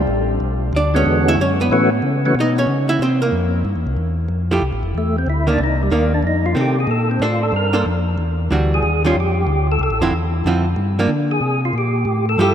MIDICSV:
0, 0, Header, 1, 4, 480
1, 0, Start_track
1, 0, Tempo, 323799
1, 608, Time_signature, 4, 2, 24, 8
1, 18595, End_track
2, 0, Start_track
2, 0, Title_t, "Tonewheel organ"
2, 0, Program_c, 0, 16
2, 1393, Note_on_c, 0, 50, 70
2, 1401, Note_on_c, 0, 56, 68
2, 1404, Note_on_c, 0, 59, 60
2, 1404, Note_on_c, 0, 61, 66
2, 1408, Note_on_c, 0, 66, 79
2, 2013, Note_off_c, 0, 50, 0
2, 2017, Note_off_c, 0, 56, 0
2, 2019, Note_off_c, 0, 59, 0
2, 2019, Note_off_c, 0, 61, 0
2, 2021, Note_off_c, 0, 66, 0
2, 2541, Note_on_c, 0, 52, 73
2, 2547, Note_on_c, 0, 57, 65
2, 2553, Note_on_c, 0, 61, 73
2, 2559, Note_on_c, 0, 59, 71
2, 2561, Note_on_c, 0, 66, 85
2, 2814, Note_off_c, 0, 52, 0
2, 2817, Note_off_c, 0, 57, 0
2, 2820, Note_off_c, 0, 61, 0
2, 2823, Note_off_c, 0, 59, 0
2, 2824, Note_off_c, 0, 66, 0
2, 3341, Note_on_c, 0, 57, 62
2, 3344, Note_on_c, 0, 52, 72
2, 3346, Note_on_c, 0, 59, 65
2, 3351, Note_on_c, 0, 61, 69
2, 3356, Note_on_c, 0, 66, 76
2, 3484, Note_off_c, 0, 57, 0
2, 3486, Note_off_c, 0, 52, 0
2, 3487, Note_off_c, 0, 59, 0
2, 3489, Note_off_c, 0, 61, 0
2, 3492, Note_off_c, 0, 66, 0
2, 7379, Note_on_c, 0, 57, 66
2, 7655, Note_off_c, 0, 57, 0
2, 7686, Note_on_c, 0, 60, 90
2, 7829, Note_off_c, 0, 60, 0
2, 7851, Note_on_c, 0, 64, 82
2, 8131, Note_off_c, 0, 64, 0
2, 8171, Note_on_c, 0, 62, 84
2, 8312, Note_off_c, 0, 62, 0
2, 8354, Note_on_c, 0, 63, 80
2, 8623, Note_off_c, 0, 63, 0
2, 8641, Note_on_c, 0, 55, 57
2, 8787, Note_off_c, 0, 55, 0
2, 8809, Note_on_c, 0, 58, 71
2, 9090, Note_off_c, 0, 58, 0
2, 9107, Note_on_c, 0, 62, 83
2, 9260, Note_off_c, 0, 62, 0
2, 9293, Note_on_c, 0, 63, 76
2, 9572, Note_off_c, 0, 63, 0
2, 9576, Note_on_c, 0, 65, 101
2, 9734, Note_off_c, 0, 65, 0
2, 9795, Note_on_c, 0, 67, 72
2, 10063, Note_off_c, 0, 67, 0
2, 10083, Note_on_c, 0, 68, 80
2, 10228, Note_off_c, 0, 68, 0
2, 10243, Note_on_c, 0, 69, 93
2, 10527, Note_off_c, 0, 69, 0
2, 10543, Note_on_c, 0, 60, 72
2, 10698, Note_off_c, 0, 60, 0
2, 10738, Note_on_c, 0, 65, 86
2, 11014, Note_off_c, 0, 65, 0
2, 11018, Note_on_c, 0, 69, 88
2, 11175, Note_off_c, 0, 69, 0
2, 11211, Note_on_c, 0, 70, 82
2, 11638, Note_off_c, 0, 70, 0
2, 12959, Note_on_c, 0, 68, 96
2, 13386, Note_off_c, 0, 68, 0
2, 13445, Note_on_c, 0, 65, 92
2, 13588, Note_off_c, 0, 65, 0
2, 13641, Note_on_c, 0, 67, 73
2, 14340, Note_off_c, 0, 67, 0
2, 14404, Note_on_c, 0, 69, 94
2, 14547, Note_off_c, 0, 69, 0
2, 14574, Note_on_c, 0, 69, 81
2, 14851, Note_off_c, 0, 69, 0
2, 16771, Note_on_c, 0, 68, 94
2, 17209, Note_off_c, 0, 68, 0
2, 17273, Note_on_c, 0, 65, 91
2, 17420, Note_off_c, 0, 65, 0
2, 17462, Note_on_c, 0, 67, 75
2, 18168, Note_off_c, 0, 67, 0
2, 18221, Note_on_c, 0, 69, 100
2, 18373, Note_off_c, 0, 69, 0
2, 18412, Note_on_c, 0, 69, 102
2, 18583, Note_off_c, 0, 69, 0
2, 18595, End_track
3, 0, Start_track
3, 0, Title_t, "Hollow-body jazz guitar"
3, 0, Program_c, 1, 26
3, 1133, Note_on_c, 1, 74, 83
3, 1141, Note_on_c, 1, 62, 66
3, 1411, Note_off_c, 1, 74, 0
3, 1415, Note_off_c, 1, 62, 0
3, 1423, Note_on_c, 1, 61, 80
3, 1430, Note_on_c, 1, 73, 76
3, 1859, Note_off_c, 1, 61, 0
3, 1860, Note_off_c, 1, 73, 0
3, 1903, Note_on_c, 1, 76, 108
3, 1911, Note_on_c, 1, 64, 81
3, 2057, Note_off_c, 1, 76, 0
3, 2061, Note_off_c, 1, 64, 0
3, 2093, Note_on_c, 1, 73, 79
3, 2104, Note_on_c, 1, 61, 61
3, 2372, Note_off_c, 1, 73, 0
3, 2377, Note_off_c, 1, 61, 0
3, 2386, Note_on_c, 1, 71, 80
3, 2395, Note_on_c, 1, 59, 72
3, 2979, Note_off_c, 1, 71, 0
3, 2984, Note_off_c, 1, 59, 0
3, 3562, Note_on_c, 1, 63, 82
3, 3569, Note_on_c, 1, 75, 83
3, 3827, Note_on_c, 1, 61, 66
3, 3828, Note_off_c, 1, 63, 0
3, 3828, Note_off_c, 1, 75, 0
3, 3834, Note_on_c, 1, 73, 85
3, 4261, Note_off_c, 1, 73, 0
3, 4262, Note_off_c, 1, 61, 0
3, 4284, Note_on_c, 1, 76, 102
3, 4292, Note_on_c, 1, 64, 75
3, 4448, Note_off_c, 1, 76, 0
3, 4452, Note_off_c, 1, 64, 0
3, 4479, Note_on_c, 1, 72, 85
3, 4486, Note_on_c, 1, 60, 71
3, 4765, Note_off_c, 1, 72, 0
3, 4769, Note_off_c, 1, 60, 0
3, 4769, Note_on_c, 1, 70, 89
3, 4782, Note_on_c, 1, 58, 65
3, 5370, Note_off_c, 1, 70, 0
3, 5377, Note_off_c, 1, 58, 0
3, 6690, Note_on_c, 1, 57, 64
3, 6693, Note_on_c, 1, 53, 69
3, 6707, Note_on_c, 1, 64, 72
3, 6708, Note_on_c, 1, 67, 74
3, 6839, Note_off_c, 1, 57, 0
3, 6841, Note_off_c, 1, 53, 0
3, 6848, Note_off_c, 1, 64, 0
3, 6848, Note_off_c, 1, 67, 0
3, 8109, Note_on_c, 1, 51, 63
3, 8118, Note_on_c, 1, 58, 70
3, 8134, Note_on_c, 1, 62, 69
3, 8269, Note_off_c, 1, 51, 0
3, 8273, Note_off_c, 1, 58, 0
3, 8281, Note_off_c, 1, 62, 0
3, 8768, Note_on_c, 1, 51, 62
3, 8778, Note_on_c, 1, 58, 69
3, 8782, Note_on_c, 1, 62, 70
3, 9048, Note_off_c, 1, 51, 0
3, 9052, Note_off_c, 1, 58, 0
3, 9054, Note_off_c, 1, 62, 0
3, 9709, Note_on_c, 1, 51, 59
3, 9730, Note_on_c, 1, 57, 55
3, 9733, Note_on_c, 1, 60, 66
3, 9998, Note_off_c, 1, 51, 0
3, 10009, Note_off_c, 1, 57, 0
3, 10010, Note_off_c, 1, 60, 0
3, 10701, Note_on_c, 1, 62, 69
3, 10708, Note_on_c, 1, 72, 78
3, 10709, Note_on_c, 1, 69, 72
3, 11422, Note_off_c, 1, 62, 0
3, 11426, Note_off_c, 1, 72, 0
3, 11427, Note_off_c, 1, 69, 0
3, 11460, Note_on_c, 1, 58, 66
3, 11464, Note_on_c, 1, 62, 73
3, 11470, Note_on_c, 1, 69, 72
3, 11480, Note_on_c, 1, 72, 77
3, 11623, Note_off_c, 1, 58, 0
3, 11625, Note_off_c, 1, 62, 0
3, 11629, Note_off_c, 1, 69, 0
3, 11633, Note_off_c, 1, 72, 0
3, 12611, Note_on_c, 1, 52, 59
3, 12626, Note_on_c, 1, 55, 67
3, 12628, Note_on_c, 1, 62, 69
3, 12642, Note_on_c, 1, 66, 65
3, 13090, Note_off_c, 1, 52, 0
3, 13098, Note_off_c, 1, 55, 0
3, 13098, Note_off_c, 1, 62, 0
3, 13105, Note_off_c, 1, 66, 0
3, 13409, Note_on_c, 1, 51, 64
3, 13418, Note_on_c, 1, 55, 69
3, 13430, Note_on_c, 1, 61, 77
3, 13437, Note_on_c, 1, 65, 78
3, 13557, Note_off_c, 1, 51, 0
3, 13562, Note_off_c, 1, 55, 0
3, 13568, Note_off_c, 1, 61, 0
3, 13571, Note_off_c, 1, 65, 0
3, 14847, Note_on_c, 1, 53, 74
3, 14851, Note_on_c, 1, 50, 69
3, 14855, Note_on_c, 1, 60, 78
3, 14863, Note_on_c, 1, 64, 84
3, 14996, Note_off_c, 1, 53, 0
3, 14998, Note_off_c, 1, 50, 0
3, 15000, Note_off_c, 1, 60, 0
3, 15004, Note_off_c, 1, 64, 0
3, 15505, Note_on_c, 1, 50, 63
3, 15520, Note_on_c, 1, 60, 65
3, 15521, Note_on_c, 1, 53, 72
3, 15522, Note_on_c, 1, 64, 76
3, 15774, Note_off_c, 1, 50, 0
3, 15781, Note_off_c, 1, 60, 0
3, 15782, Note_off_c, 1, 53, 0
3, 15782, Note_off_c, 1, 64, 0
3, 16291, Note_on_c, 1, 53, 67
3, 16299, Note_on_c, 1, 58, 80
3, 16304, Note_on_c, 1, 62, 80
3, 16437, Note_off_c, 1, 53, 0
3, 16441, Note_off_c, 1, 58, 0
3, 16444, Note_off_c, 1, 62, 0
3, 18367, Note_on_c, 1, 53, 70
3, 18384, Note_on_c, 1, 57, 71
3, 18386, Note_on_c, 1, 64, 76
3, 18393, Note_on_c, 1, 67, 87
3, 18595, Note_off_c, 1, 53, 0
3, 18595, Note_off_c, 1, 57, 0
3, 18595, Note_off_c, 1, 64, 0
3, 18595, Note_off_c, 1, 67, 0
3, 18595, End_track
4, 0, Start_track
4, 0, Title_t, "Tonewheel organ"
4, 0, Program_c, 2, 16
4, 108, Note_on_c, 2, 33, 88
4, 584, Note_off_c, 2, 33, 0
4, 596, Note_on_c, 2, 35, 83
4, 1068, Note_off_c, 2, 35, 0
4, 1080, Note_on_c, 2, 38, 94
4, 1550, Note_off_c, 2, 38, 0
4, 1568, Note_on_c, 2, 40, 89
4, 2035, Note_off_c, 2, 40, 0
4, 2043, Note_on_c, 2, 42, 84
4, 2512, Note_off_c, 2, 42, 0
4, 2517, Note_on_c, 2, 45, 87
4, 2989, Note_off_c, 2, 45, 0
4, 3000, Note_on_c, 2, 49, 96
4, 3471, Note_off_c, 2, 49, 0
4, 3479, Note_on_c, 2, 47, 94
4, 3950, Note_off_c, 2, 47, 0
4, 3958, Note_on_c, 2, 49, 91
4, 4430, Note_off_c, 2, 49, 0
4, 4439, Note_on_c, 2, 48, 87
4, 4910, Note_off_c, 2, 48, 0
4, 4925, Note_on_c, 2, 41, 92
4, 5393, Note_off_c, 2, 41, 0
4, 5408, Note_on_c, 2, 43, 94
4, 5565, Note_off_c, 2, 43, 0
4, 5567, Note_on_c, 2, 40, 54
4, 5729, Note_off_c, 2, 40, 0
4, 5734, Note_on_c, 2, 36, 74
4, 5879, Note_on_c, 2, 40, 90
4, 5881, Note_off_c, 2, 36, 0
4, 6351, Note_off_c, 2, 40, 0
4, 6353, Note_on_c, 2, 41, 84
4, 6828, Note_off_c, 2, 41, 0
4, 6843, Note_on_c, 2, 36, 93
4, 7002, Note_off_c, 2, 36, 0
4, 7005, Note_on_c, 2, 33, 54
4, 7160, Note_on_c, 2, 29, 65
4, 7168, Note_off_c, 2, 33, 0
4, 7314, Note_off_c, 2, 29, 0
4, 7333, Note_on_c, 2, 40, 83
4, 7798, Note_off_c, 2, 40, 0
4, 7805, Note_on_c, 2, 38, 86
4, 8274, Note_off_c, 2, 38, 0
4, 8283, Note_on_c, 2, 36, 84
4, 8753, Note_off_c, 2, 36, 0
4, 8756, Note_on_c, 2, 39, 99
4, 9229, Note_off_c, 2, 39, 0
4, 9230, Note_on_c, 2, 41, 83
4, 9705, Note_on_c, 2, 48, 85
4, 9706, Note_off_c, 2, 41, 0
4, 10183, Note_off_c, 2, 48, 0
4, 10187, Note_on_c, 2, 46, 91
4, 10664, Note_off_c, 2, 46, 0
4, 10669, Note_on_c, 2, 45, 93
4, 11145, Note_off_c, 2, 45, 0
4, 11150, Note_on_c, 2, 43, 82
4, 11625, Note_off_c, 2, 43, 0
4, 11649, Note_on_c, 2, 41, 84
4, 12115, Note_off_c, 2, 41, 0
4, 12122, Note_on_c, 2, 40, 84
4, 12591, Note_off_c, 2, 40, 0
4, 12609, Note_on_c, 2, 38, 103
4, 13075, Note_off_c, 2, 38, 0
4, 13082, Note_on_c, 2, 39, 80
4, 13551, Note_off_c, 2, 39, 0
4, 13568, Note_on_c, 2, 41, 90
4, 14033, Note_off_c, 2, 41, 0
4, 14034, Note_on_c, 2, 38, 92
4, 14506, Note_off_c, 2, 38, 0
4, 14519, Note_on_c, 2, 36, 101
4, 14678, Note_off_c, 2, 36, 0
4, 14683, Note_on_c, 2, 33, 60
4, 14829, Note_on_c, 2, 29, 69
4, 14845, Note_off_c, 2, 33, 0
4, 14986, Note_on_c, 2, 40, 88
4, 14987, Note_off_c, 2, 29, 0
4, 15462, Note_off_c, 2, 40, 0
4, 15483, Note_on_c, 2, 41, 95
4, 15950, Note_off_c, 2, 41, 0
4, 15956, Note_on_c, 2, 43, 86
4, 16425, Note_on_c, 2, 50, 96
4, 16426, Note_off_c, 2, 43, 0
4, 16901, Note_off_c, 2, 50, 0
4, 16913, Note_on_c, 2, 48, 85
4, 17384, Note_off_c, 2, 48, 0
4, 17395, Note_on_c, 2, 46, 85
4, 17865, Note_off_c, 2, 46, 0
4, 17865, Note_on_c, 2, 45, 87
4, 18340, Note_off_c, 2, 45, 0
4, 18355, Note_on_c, 2, 43, 102
4, 18595, Note_off_c, 2, 43, 0
4, 18595, End_track
0, 0, End_of_file